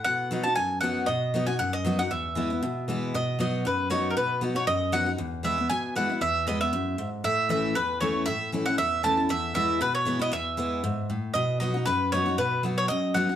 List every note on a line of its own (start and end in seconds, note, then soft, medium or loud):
0.04 0.55 B2 medium
0.04 0.43 F#5 loud
0.31 0.44 F#3 medium
0.31 0.45 B3 medium
0.31 0.45 D#4 medium
0.31 0.44 F#4 medium
0.43 0.56 F#4 medium
0.43 0.55 A5 medium
0.48 0.58 D#4 medium
0.55 1.06 F#2 medium
0.55 0.80 G#5 medium
0.81 1.06 F#3 medium
0.81 1.07 B3 medium
0.81 1.07 D#4 loud
0.81 1.08 F#4 loud
0.81 1.08 F#5 medium
1.06 1.57 B2 medium
1.06 1.44 D#5 medium
1.34 1.47 F#3 medium
1.34 1.48 B3 medium
1.34 1.48 D#4 medium
1.34 1.46 F#4 loud
1.47 1.60 D#4 medium
1.47 1.59 F#4 medium
1.47 1.58 G#5 medium
1.59 2.09 F#2 loud
1.59 1.74 F#5 medium
1.73 2.00 D#5 loud
1.85 1.98 F#3 medium
1.85 1.99 B3 medium
1.85 1.99 D#4 medium
1.85 1.97 F#4 medium
1.99 2.11 D#4 medium
1.99 2.10 F#4 medium
1.99 2.11 F#5 medium
2.11 2.60 E2 medium
2.11 2.84 E5 medium
2.35 2.49 E3 medium
2.35 2.50 G#3 medium
2.35 2.50 B3 loud
2.35 2.49 E4 medium
2.50 2.63 B3 medium
2.50 2.62 E4 medium
2.62 3.11 B2 medium
2.88 3.12 E3 medium
2.88 3.13 G#3 medium
2.88 3.13 B3 medium
2.88 3.13 E4 medium
3.14 3.63 B2 medium
3.14 3.39 D#5 medium
3.39 3.63 F#3 medium
3.39 3.64 B3 medium
3.39 3.64 D#4 medium
3.39 3.65 F#4 medium
3.39 3.64 D#5 medium
3.65 4.14 F#2 medium
3.65 3.90 B4 medium
3.90 4.15 F#3 medium
3.90 4.15 B3 medium
3.90 4.15 D#4 medium
3.90 4.16 F#4 medium
3.90 4.10 C#5 medium
4.10 4.16 A#4 medium
4.17 4.65 B2 medium
4.17 4.40 B4 medium
4.41 4.55 F#3 medium
4.41 4.55 B3 medium
4.41 4.56 D#4 medium
4.41 4.54 F#4 medium
4.55 4.68 D#4 soft
4.55 4.67 F#4 medium
4.55 4.67 C#5 medium
4.67 5.16 F#2 loud
4.67 4.94 D#5 loud
4.92 5.06 F#3 medium
4.92 5.06 B3 medium
4.92 5.07 D#4 loud
4.92 5.05 F#4 loud
4.92 5.11 F#5 loud
5.06 5.19 D#4 medium
5.06 5.18 F#4 medium
5.18 5.68 E2 loud
5.43 5.57 E3 medium
5.43 5.58 G#3 medium
5.43 5.58 B3 medium
5.43 5.57 E4 medium
5.43 5.68 E5 medium
5.58 5.71 B3 soft
5.58 5.69 E4 medium
5.70 6.19 B2 medium
5.70 5.96 G#5 medium
5.95 6.09 E3 medium
5.95 6.09 G#3 medium
5.95 6.10 B3 medium
5.95 6.08 E4 medium
5.95 6.21 F#5 medium
6.09 6.22 B3 medium
6.09 6.21 E4 medium
6.21 6.70 E2 medium
6.21 6.45 E5 medium
6.47 6.60 E3 medium
6.47 6.61 G#3 medium
6.47 6.61 B3 medium
6.47 6.59 E4 medium
6.47 6.60 D#5 medium
6.61 6.73 B3 medium
6.61 6.72 E4 medium
6.61 7.09 E5 medium
6.73 6.97 F#2 medium
6.98 7.23 G#2 medium
7.24 7.73 A2 medium
7.24 7.48 E5 medium
7.49 7.74 E3 medium
7.49 7.74 A3 medium
7.49 7.75 C#4 medium
7.49 7.75 E4 medium
7.49 7.76 E5 medium
7.75 8.25 E2 medium
7.75 8.00 B4 medium
8.01 8.26 E3 medium
8.01 8.26 A3 medium
8.01 8.26 C#4 medium
8.01 8.27 E4 medium
8.01 8.25 C#5 medium
8.26 8.76 A2 loud
8.26 8.50 E5 loud
8.52 8.66 E3 medium
8.52 8.66 A3 medium
8.52 8.66 C#4 medium
8.52 8.65 E4 medium
8.66 8.79 C#4 medium
8.66 8.78 E4 medium
8.66 8.78 F#5 loud
8.78 9.27 E2 loud
8.78 9.04 E5 loud
9.03 9.17 E3 medium
9.03 9.17 A3 medium
9.03 9.18 C#4 medium
9.03 9.16 E4 loud
9.03 9.22 A5 loud
9.17 9.30 C#4 medium
9.17 9.29 E4 medium
9.29 9.78 E2 medium
9.29 9.54 E5 loud
9.54 9.79 E3 medium
9.54 9.80 G#3 medium
9.54 9.80 B3 loud
9.54 9.80 E4 loud
9.54 9.79 E5 loud
9.81 10.30 B2 loud
9.81 9.94 B4 loud
9.95 10.19 C#5 loud
10.05 10.19 E3 medium
10.05 10.20 G#3 medium
10.05 10.20 B3 loud
10.05 10.18 E4 loud
10.19 10.33 B3 medium
10.19 10.31 E4 medium
10.19 10.33 D#5 loud
10.32 10.81 E2 medium
10.32 11.06 E5 medium
10.57 10.82 E3 medium
10.57 10.83 G#3 medium
10.57 10.83 B3 medium
10.57 10.83 E4 loud
10.84 11.08 G#2 medium
11.10 11.34 A2 medium
11.34 11.84 B2 medium
11.34 11.58 D#5 medium
11.60 11.74 F#3 medium
11.60 11.74 B3 medium
11.60 11.75 D#4 medium
11.60 11.73 F#4 medium
11.60 11.85 D#5 medium
11.74 11.87 D#4 medium
11.74 11.86 F#4 medium
11.86 12.36 F#2 loud
11.86 12.12 B4 loud
12.12 12.25 F#3 medium
12.12 12.26 B3 medium
12.12 12.26 D#4 loud
12.12 12.24 F#4 loud
12.12 12.36 C#5 medium
12.26 12.38 D#4 medium
12.26 12.37 F#4 medium
12.38 12.87 B2 medium
12.38 12.62 B4 medium
12.63 12.88 F#3 medium
12.63 12.88 B3 medium
12.63 12.89 D#4 medium
12.63 12.89 F#4 medium
12.78 12.88 C#5 medium
12.88 13.36 F#2 loud
12.88 13.15 D#5 loud
13.14 13.28 F#3 medium
13.14 13.29 B3 medium
13.14 13.29 D#4 loud
13.14 13.28 F#4 loud
13.14 13.33 F#5 loud
13.29 13.36 D#4 medium
13.29 13.36 F#4 medium